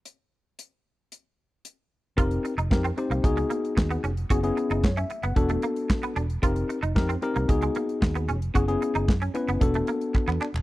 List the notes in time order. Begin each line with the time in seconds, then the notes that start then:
0.05 closed hi-hat
0.59 closed hi-hat
1.12 closed hi-hat
1.65 closed hi-hat
2.17 F1 C4 D#4 F4 G4 A#4, kick, closed hi-hat
2.31 closed hi-hat
2.45 muted clean electric guitar stroke, closed hi-hat
2.58 F1 D#4, closed hi-hat
2.71 F2 C4 D#4 G4 A#4, kick, snare, clap
2.84 C4, closed hi-hat
2.97 C4 D#4 G4 C5, muted clean electric guitar stroke, closed hi-hat
3.10 C2 A#3, closed hi-hat
3.23 C#2 B3 D#4 F#4 G#4, muted clean electric guitar stroke, kick, closed hi-hat
3.37 G#3, closed hi-hat
3.50 A#3, closed hi-hat
3.65 closed hi-hat
3.77 D#2, muted clean electric guitar stroke, kick, snare, clap
3.91 B3, closed hi-hat
4.04 F1 C#4, closed hi-hat
4.17 closed hi-hat
4.30 F#1 B3 C#4 E4 F#4 G#4, kick, closed hi-hat
4.43 B3 C#4 E4 G#4, closed hi-hat
4.57 muted clean electric guitar stroke, closed hi-hat
4.70 F#1 D#4, closed hi-hat
4.84 F#2 C#5, kick, snare, clap
4.97 C#4 E5, closed hi-hat
5.10 muted clean electric guitar stroke, closed hi-hat
5.23 F#1 B3 F#5, closed hi-hat
5.36 E1 B3 D4 F#4 A4, muted clean electric guitar stroke, kick, closed hi-hat
5.49 A3, closed hi-hat
5.62 A#3, closed hi-hat
5.76 closed hi-hat
5.90 muted clean electric guitar stroke, kick, snare, clap
6.03 B3, closed hi-hat
6.16 E1 D4, closed hi-hat
6.30 closed hi-hat
6.42 F1 C4 D#4 F4 G4 A#4, kick, closed hi-hat
6.56 closed hi-hat
6.69 muted clean electric guitar stroke, closed hi-hat
6.83 F1 D#4, closed hi-hat
6.95 F2 C4 D#4 G4 A#4, kick, snare, clap
7.09 C4, closed hi-hat
7.22 C4 D#4 G4 A#4, muted clean electric guitar stroke, closed hi-hat
7.36 C2 A#3, closed hi-hat
7.48 C#2 B3 D#4 F#4 G#4, muted clean electric guitar stroke, kick, closed hi-hat
7.62 G#3, closed hi-hat
7.75 A#3, closed hi-hat
7.89 closed hi-hat
8.02 D#2, muted clean electric guitar stroke, kick, snare, clap
8.15 B3, closed hi-hat
8.28 F1 C#4, closed hi-hat
8.42 closed hi-hat
8.54 F#1 B3 C#4 E4 F#4 G#4, kick, closed hi-hat
8.68 B3 C#4 E4 G#4, closed hi-hat
8.82 muted clean electric guitar stroke, closed hi-hat
8.95 F#1 D#4, closed hi-hat
9.08 F#2, kick, snare, clap
9.22 C#4, closed hi-hat
9.34 B3 C#4 E4 B4, muted clean electric guitar stroke, closed hi-hat
9.48 F#1 B3, closed hi-hat
9.61 E1 B3 D4 F#4 A4, muted clean electric guitar stroke, kick, closed hi-hat
9.74 A3, closed hi-hat
9.87 A#3, closed hi-hat
10.01 closed hi-hat
10.15 muted clean electric guitar stroke, kick, clap
10.28 E2 B3, clap
10.41 D4, clap
10.54 E1, clap